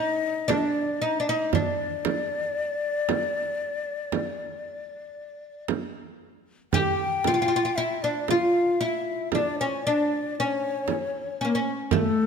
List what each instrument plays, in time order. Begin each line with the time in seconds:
Already playing: oud D#4, ney D#5
0.48 oud D4, frame drum
0.52 ney D5
0.58 ney D#5
0.65 ney D5
1.02 oud D#4, ney D#5
1.20 oud D4
1.29 oud D#4, ney D#5
1.53 oud D4, ney D5, frame drum
2.05 frame drum
3.09 frame drum
4.12 frame drum
5.68 frame drum
6.73 oud G4, ney G5, frame drum
7.24 oud F4, frame drum
7.34 oud F4
7.42 oud F4
7.48 oud F4
7.56 oud F4
7.65 oud F4
7.76 oud E4, ney E5
8.02 oud D4, ney D5
8.28 oud F4, ney F5, frame drum
8.81 oud E4, ney E5
9.32 oud D4, ney D5, frame drum
9.59 oud C#4, ney C#5
9.84 oud D4, ney D5
10.36 ney C#5
10.40 oud C#4
10.88 frame drum
11.41 oud A#3 C#4
11.55 oud C#4
11.91 oud A3, ney A4, frame drum